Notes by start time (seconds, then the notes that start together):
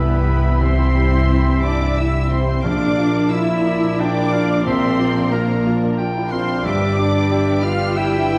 Already playing: C2 G2 E3 B3 E4 G4 B4 E5 B5
0.10 D4
0.28 E4
0.44 E5
0.60 C2 C4 C5 C6
0.79 E4
0.95 G2
1.13 E5
1.30 E4
1.47 G2
1.62 D4 E4 D5 D6
1.81 E5
1.96 E4 E5 E6
2.14 D4
2.30 C4 E4 C5 C6
2.48 E5
2.63 A#1 F3 A#3 D4 A#4 D5 F5 D6
2.81 D4
2.98 F4
3.16 D5
3.31 E4 F4 E5 E6
3.50 D4
3.67 F4 D5
3.84 D5
3.97 D4 F4 G5 D6
4.01 D5
4.17 E4
4.33 F4 F5
4.50 D5
4.62 C4 C5 C6
4.66 A#1 E5
4.84 D4
4.99 F4 D5
5.18 D5
5.31 A#3 F4 A#4 F5 A#5
5.50 D4
5.66 F4
5.83 D5
5.98 F4 G5
6.17 E4
6.31 C4 F4 C5 F5 C6
6.49 D5
6.63 G1 G2 G3 D4 G4 B4 D5 E5 D6
6.82 D4
6.99 G4 D5
7.16 D5
7.31 G4 E5
7.47 D4
7.62 F4 G4 D5 F5 F6
7.82 D5
7.96 E4 G4 E5 G5 E6
8.15 F4
8.32 G4